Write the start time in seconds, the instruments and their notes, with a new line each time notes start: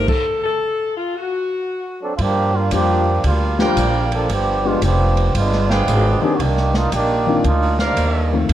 0.08 saxophone section A4, kick, crash
0.44 saxophone section A4
0.96 saxophone section F4
1.16 saxophone section F#4
2.02 trombone section F#3 C4 D4 A4
2.16 upright bass G2, trombone section F3 F4, kick, ride
2.20 trombone section A#3 D4 G4
2.55 trombone section G3 A#3 D4 F4
2.71 upright bass F2, grand piano F3 G3 A#3 D4 G4, trombone section F3 A#3 D4 G4, kick, hi-hat pedal, ride
3.24 upright bass D2, trombone section G3 A#3 D4 F4, kick, ride
3.58 grand piano F3 G3 A#3 D4 G4, trombone section F3 G3 A#3 D4, trumpet section A#4 D5 F5 G5, snare
3.77 upright bass A#1, kick, hi-hat pedal, ride
4.12 trombone section F3 A#3 D4 A4, ride
4.29 upright bass G1, trombone section F3 B3 D4 G4, kick, ride
4.64 grand piano F3 G#3 B3 D4 G4, trombone section G#3 B3 D4 F4
4.82 upright bass F1, trombone section F3 B3 D4 G4, kick, hi-hat pedal, ride
5.17 ride
5.34 upright bass G1, trombone section G#3 B3 D4 F4, kick, ride
5.53 snare
5.69 trombone section F3 G#3 B3 D4, trumpet section G#4 B4 F5 G5, snare
5.87 upright bass G#1, kick, hi-hat pedal, ride
6.22 grand piano D#3 A#3 C4 D4 G4, trombone section F3 B3 D4 G#4, muted upright bass stroke
6.35 upright bass C2, trombone section F#4
6.40 trombone section D#3 A#3 D4 G4, kick, ride
6.57 snare
6.74 trombone section A#3 D4 D#4 F4, snare
6.92 upright bass A#1, trombone section D#3 A#3 D4 G4, kick, hi-hat pedal, ride
7.27 grand piano D#3 A#3 C4 D4 F4
7.44 upright bass D2, trombone section A#3 D4 D#4 F4, kick, ride
7.79 trombone section D#3 G3 A#3, trumpet section A#4 C5 D5 F5, snare
7.83 trombone section D4
7.97 upright bass D#2, kick, hi-hat pedal, ride
8.33 grand piano D#3 F3 A3 C4 F4
8.49 upright bass F2, kick, ride